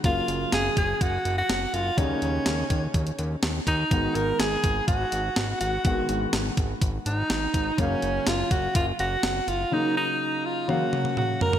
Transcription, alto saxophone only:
X:1
M:4/4
L:1/16
Q:1/4=124
K:G#dor
V:1 name="Alto saxophone"
E4 G2 G2 F3 F3 E2 | C12 z2 D2- | D2 A2 G4 F6 F2- | F4 z6 D6 |
C4 E2 F2 E2 F4 E2 | D2 D4 E2 F4 F2 A2 |]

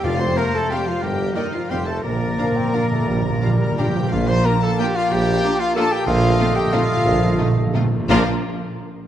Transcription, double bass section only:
X:1
M:3/4
L:1/8
Q:1/4=178
K:Bb
V:1 name="Double bass section" clef=bass
F,,2 z4 | G,,2 z2 F,,2 | B,,,2 z4 | B,,,2 z4 |
B,,,2 z4 | B,,,2 z4 | B,,,2 z4 | B,,,2 z4 |
B,,, z4 z |]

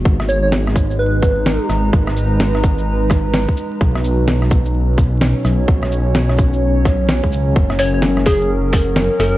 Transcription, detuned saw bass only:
X:1
M:4/4
L:1/16
Q:"Swing 16ths" 1/4=128
K:G#m
V:1 name="Detuned saw bass" clef=bass
G,,,12- G,,, z G,,,2 | G,,,12- G,,, z3 | B,,,12- B,,, z B,,,2 | B,,,12- B,,, C,,3 |
F,,,12- F,,, z F,,,2 |]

